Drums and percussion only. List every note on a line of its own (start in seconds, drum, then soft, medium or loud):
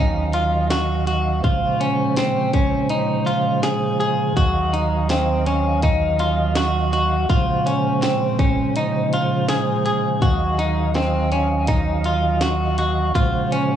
0.33 closed hi-hat soft
0.70 snare loud
0.70 closed hi-hat medium
1.07 closed hi-hat soft
1.44 kick medium
1.44 closed hi-hat medium
1.81 closed hi-hat medium
2.16 snare loud
2.16 closed hi-hat medium
2.53 kick medium
2.53 closed hi-hat soft
2.89 closed hi-hat medium
3.27 closed hi-hat soft
3.63 snare medium
3.63 closed hi-hat medium
4.00 closed hi-hat soft
4.37 kick medium
4.37 closed hi-hat medium
4.74 closed hi-hat medium
5.09 snare loud
5.09 closed hi-hat medium
5.46 closed hi-hat soft
5.82 kick medium
5.82 closed hi-hat medium
6.19 closed hi-hat soft
6.56 snare loud
6.56 closed hi-hat medium
6.93 closed hi-hat soft
7.29 kick medium
7.29 closed hi-hat medium
7.67 closed hi-hat medium
8.02 snare loud
8.02 closed hi-hat medium
8.39 kick medium
8.39 closed hi-hat soft
8.75 closed hi-hat medium
9.12 closed hi-hat soft
9.49 snare loud
9.49 closed hi-hat medium
9.86 closed hi-hat soft
10.22 kick medium
10.22 closed hi-hat medium
10.59 closed hi-hat medium
10.94 snare loud
10.94 closed hi-hat medium
11.32 closed hi-hat soft
11.68 kick medium
11.68 closed hi-hat medium
12.05 closed hi-hat soft
12.41 snare medium
12.41 closed hi-hat medium
12.78 closed hi-hat medium
13.15 kick medium
13.15 closed hi-hat medium
13.52 closed hi-hat medium